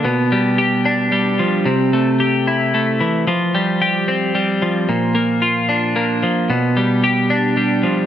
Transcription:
\new Staff \with { instrumentName = "Clean electric guitar" } { \clef bass \time 3/4 \key g \mixolydian \tempo 4 = 112 b,8 g8 g'8 d'8 g8 f8 | c8 a8 g'8 e'8 a8 e8 | f8 g8 g'8 c'8 g8 f8 | bes,8 bes8 f'8 d'8 bes8 f8 |
b,8 g8 g'8 d'8 g8 f8 | }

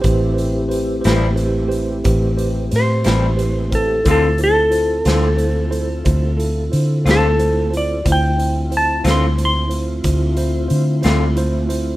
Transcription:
<<
  \new Staff \with { instrumentName = "Electric slide guitar" } { \time 12/8 \key d \dorian \tempo 4. = 60 r1 c''4. a'8 | a'8 a'2. r4 a'4 d''8 | g''4 a''8 c'''8 c'''2. r4 | }
  \new Staff \with { instrumentName = "Tine electric piano" } { \time 12/8 \key d \dorian <g' b' c''>8 <g' b' c''>8 <g' b' c''>8 <g' b' c''>8 <g' b' c''>8 <g' b' c''>8 <g' b' c''>8 <g' b' c''>8 <g' b' c''>8 <g' b' c''>8 <g' b' c''>8 <g' b' c''>8 | <e' f' c''>8 <e' f' c''>8 <e' f' c''>8 <e' f' c''>8 <e' f' c''>8 <e' f' c''>8 <e' f' c''>8 <e' f' a'>8 <e' f' c''>8 <e' f' c''>8 <e' f' c''>8 <e' f' c''>8 | <e' f' c''>8 <e' f' c''>8 <e' f' c''>8 <e' f' c''>8 <e' f' c''>8 <e' f' c''>8 <e' f' c''>8 <e' f' c''>8 <e' f' c''>8 <e' f' c''>8 <e' f' c''>8 <e' f' c''>8 | }
  \new Staff \with { instrumentName = "Tonewheel organ" } { \time 12/8 \key d \dorian <a c' e' g'>1. | <c' e' f' a'>1. | <a c' e' f'>1. | }
  \new Staff \with { instrumentName = "Clean electric guitar" } { \time 12/8 \key d \dorian r4. <a, g c' e'>8 r2 r8 <a, g c' e'>8 r4 | <d a c' f'>8 r4 <d a c' f'>8 r2 r8 <d a c' f'>8 r4 | r4. <d a c' f'>8 r2 r8 <d a c' f'>8 r4 | }
  \new Staff \with { instrumentName = "Fingered electric bass" } { \clef bass \time 12/8 \key d \dorian a,,4. a,,4. a,,4 a,8 a,,4. | d,4. d,4. d,4 d8 d,4. | d,4. d,4. d,4 d8 d,4. | }
  \new DrumStaff \with { instrumentName = "Drums" } \drummode { \time 12/8 <hh bd>8 hh8 hh8 <hh sn>8 hh8 hh8 <hh bd>8 hh8 <hh sn>8 <hh sn>8 hh8 <hh bd>8 | <hh bd>8 hh8 hh8 <hh sn>8 hh8 hh8 <hh bd>8 hh8 hh8 <hh sn>8 hh8 hh8 | <hh bd>8 hh8 hh8 <hh sn>8 hh8 hh8 <hh bd>8 hh8 hh8 <hh sn>8 hh8 hh8 | }
>>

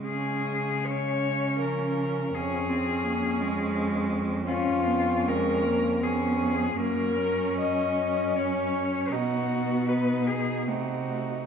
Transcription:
<<
  \new Staff \with { instrumentName = "Cello" } { \time 3/4 \key des \major \tempo 4 = 79 aes'4 des''4 bes'4 | aes'2~ aes'8 r8 | \key fis \major f'4 ais'4 aes'4 | ais'4 dis''4 cis''4 |
fis'4 b'8 gis'8 ges'4 | }
  \new Staff \with { instrumentName = "Cello" } { \time 3/4 \key des \major des'4 des'2 | des'2. | \key fis \major des'2 des'4 | cis'2 cis'4 |
dis'4 dis'4 ees'4 | }
  \new Staff \with { instrumentName = "Cello" } { \time 3/4 \key des \major aes2 f4 | des'8 c'8 bes8 aes4. | \key fis \major des'8 b8 aes8 ais8 b4 | ais8 cis'2~ cis'8 |
b2 a8 a8 | }
  \new Staff \with { instrumentName = "Cello" } { \clef bass \time 3/4 \key des \major des2. | f,2.~ | \key fis \major f,2. | fis,2. |
b,2 c4 | }
>>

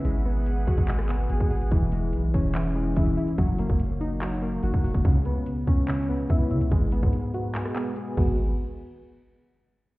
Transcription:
<<
  \new Staff \with { instrumentName = "Analog synth pad" } { \time 4/4 \key gis \minor \tempo 4 = 144 <b gis' fis''>1 | r1 | r1 | r1 |
r1 | r1 | }
  \new Staff \with { instrumentName = "Synth keys" } { \time 4/4 \key gis \minor gis8 b4 fis'8 gis8 b8 gis'8 gis'8 | e8 gis4 cis'8 e8 gis8 e'8 e'8 | fis8 ais4 dis'8 fis8 ais8 fis'8 fis'8 | cis8 b4 cis'8 cis8 b8 e'8 e'8 |
gis8 b4 fis'8 gis8 b8 gis'8 <gis b fis'>8 | r1 | }
  \new Staff \with { instrumentName = "808-style bass" } { \clef bass \time 4/4 \key gis \minor gis,,4. gis,,16 gis,,4~ gis,,16 gis,,16 gis,,8. | e,,4 b,,8 e,,4. e,,8 r8 | fis,,8. fis,,2~ fis,,16 fis,,16 fis,,8 fis,,16 | cis,4 r8 cis,4. cis,8 cis16 cis,16 |
gis,,8. gis,4~ gis,16 r4. gis,,8~ | gis,,8 r2. r8 | }
  \new DrumStaff \with { instrumentName = "Drums" } \drummode { \time 4/4 hh4 hh8 <hh bd>32 hh32 <hh bd>32 hh32 <hc hh>16 ss16 <hc hh>8 hh16 bd16 hh32 hh32 hh32 hh32 | <hh bd>8 hh8 hh8 <hh bd>8 <hc hh>4 <hh bd>8 hh16 hh16 | <hh bd>8 hh16 bd16 hh8 hh8 <hc hh>4 hh16 bd16 <hh hho>16 <hh bd>16 | <hh bd>8 hh8 hh8 <hh bd>8 <hc hh>4 <hh bd>8 hh16 hh16 |
<hh bd>8 hh16 bd16 hh8 hh8 <hc hh>16 ss16 hc8 hh8 <cymc bd>8 | r4 r4 r4 r4 | }
>>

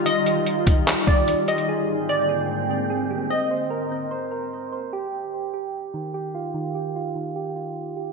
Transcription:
<<
  \new Staff \with { instrumentName = "Synth pluck" } { \time 4/4 \key ees \major \tempo 4 = 148 ees''2~ ees''8 d''4 ees''8 | r4 d''2 r4 | ees''2. r4 | r1 |
r1 | }
  \new Staff \with { instrumentName = "Synth keys" } { \time 4/4 \key ees \major <ees f' g'>8 g'8 f'8 ees8 g'8 f'4 g'8 | aes'4. aes'4 aes8 aes'8 g'8 | c'8 c''8 bes'8 c'8 c''8 bes'4 c''8 | g'4. g'4 ees8 g'8 f'8 |
ees8 g'8 f'8 ees8 g'8 f'4 g'8 | }
  \new Staff \with { instrumentName = "Ambient pad" } { \time 4/4 \key ees \major <ees g ees' f'>1 | <aes, d bes c' g''>1 | r1 | r1 |
r1 | }
  \new DrumStaff \with { instrumentName = "Drums" } \drummode { \time 4/4 hh8 hh8 hh8 <hh bd>8 <hc hh>8 bd8 hh8 hh16 hh16 | r4 r4 r4 r4 | r4 r4 r4 r4 | r4 r4 r4 r4 |
r4 r4 r4 r4 | }
>>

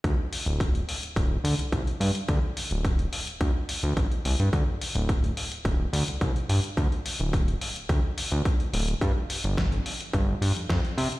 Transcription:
<<
  \new Staff \with { instrumentName = "Analog synth bass" } { \clef bass \time 4/4 \key d \minor \tempo 4 = 107 d,16 r8 d,,8. r8 d,,8 d,16 c,16 c,16 r16 g,16 r16 | d,16 r8 d,,8. r8 d,16 r8 d,16 a,,16 r16 c,16 g,16 | d,16 r8 d,,8. r8 d,,8 d,16 c,16 c,16 r16 g,16 r16 | d,16 r8 d,,8. r8 d,16 r8 d,16 r8 d,,8 |
g,16 r8 g,,8. r8 g,,8 g,16 f,16 f,16 r16 c16 r16 | }
  \new DrumStaff \with { instrumentName = "Drums" } \drummode { \time 4/4 <hh bd>8 hho16 hh16 <hh bd>16 hh16 hho16 hh16 <hh bd>8 hho16 hh16 <hh bd>16 hh16 hho16 hh16 | <hh bd>8 hho16 hh16 <hh bd>16 hh16 hho16 hh16 <hh bd>8 hho8 <hh bd>16 hh16 hho16 hh16 | <hh bd>8 hho16 hh16 <hh bd>16 hh16 hho16 hh16 <hh bd>8 hho16 hh16 <hh bd>16 hh16 hho16 hh16 | <hh bd>16 hh16 hho16 hh16 <hh bd>16 hh16 hho16 hh16 <hh bd>8 hho16 hh16 <hh bd>16 hh16 hho16 hh16 |
<hh bd>8 hho16 hh16 <hh bd sn>16 hh16 hho16 hh16 <hh bd>8 hho16 hh16 <hh bd sn>16 hh16 hho16 hh16 | }
>>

